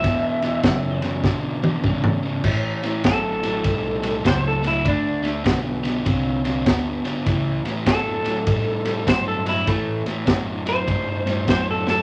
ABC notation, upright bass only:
X:1
M:4/4
L:1/8
Q:"Swing" 1/4=100
K:D
V:1 name="Upright bass" clef=bass
E,,2 F,,2 B,,2 ^G,,2 | A,,2 A,,,2 B,,,2 C,,2 | D,,2 B,,,2 =C,,2 D,, z | C,, z F,, z A,,2 G,,2 |
A,, z F,,2 G,,2 F,,2 |]